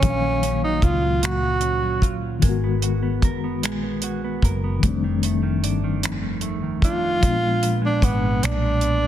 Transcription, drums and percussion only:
0.03 kick medium
0.03 closed hi-hat medium
0.43 closed hi-hat soft
0.82 kick medium
0.82 closed hi-hat soft
1.23 finger snap medium
1.23 closed hi-hat medium
1.61 closed hi-hat soft
2.02 kick medium
2.02 closed hi-hat soft
2.42 kick medium
2.42 closed hi-hat medium
2.82 closed hi-hat soft
3.22 kick medium
3.22 closed hi-hat soft
3.63 finger snap medium
3.63 closed hi-hat medium
4.02 closed hi-hat soft
4.42 kick medium
4.42 closed hi-hat soft
4.83 kick medium
4.83 closed hi-hat medium
5.23 closed hi-hat soft
5.64 closed hi-hat soft
6.03 finger snap medium
6.03 closed hi-hat medium
6.41 closed hi-hat soft
6.82 kick medium
6.82 closed hi-hat soft
7.23 kick medium
7.23 closed hi-hat medium
7.63 closed hi-hat soft
8.02 kick medium
8.02 closed hi-hat soft
8.43 finger snap loud
8.43 closed hi-hat medium
8.81 closed hi-hat soft

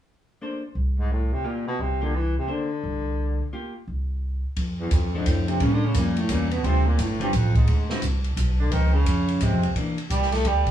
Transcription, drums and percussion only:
4.57 kick soft
4.57 ride soft
4.91 kick soft
4.91 hi-hat pedal medium
4.91 ride soft
5.26 kick soft
5.26 hi-hat pedal soft
5.26 ride medium
5.48 ride soft
5.60 kick soft
5.60 ride soft
5.94 kick soft
5.94 hi-hat pedal medium
5.94 ride medium
6.17 ride soft
6.29 kick soft
6.29 hi-hat pedal medium
6.29 ride medium
6.51 ride soft
6.64 kick soft
6.64 ride soft
6.99 kick soft
6.99 hi-hat pedal soft
6.99 ride medium
7.21 ride soft
7.33 kick soft
7.33 hi-hat pedal medium
7.33 ride medium
7.55 kick soft
7.55 ride soft
7.67 ride soft
7.89 snare soft
8.02 kick soft
8.02 hi-hat pedal soft
8.02 ride medium
8.24 ride soft
8.37 kick soft
8.37 hi-hat pedal medium
8.37 ride medium
8.71 kick soft
8.71 ride soft
9.06 kick soft
9.06 hi-hat pedal soft
9.06 ride medium
9.28 ride soft
9.41 kick soft
9.41 hi-hat pedal soft
9.41 ride medium
9.63 ride soft
9.76 kick soft
9.76 ride soft
9.98 ride soft
10.10 kick soft
10.10 hi-hat pedal soft
10.10 ride medium
10.22 snare soft
10.32 snare soft
10.32 ride soft
10.45 kick soft
10.45 ride soft
10.67 kick soft
10.67 ride soft

